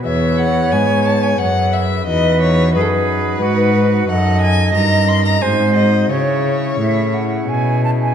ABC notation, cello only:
X:1
M:3/4
L:1/8
Q:1/4=89
K:Bmix
V:1 name="Cello" clef=bass
E,,2 G,,2 F,,2 | E,,2 F,,2 G,,2 | [K:C#m] F,,2 =G,,2 ^G,,2 | C,2 A,,2 B,,2 |]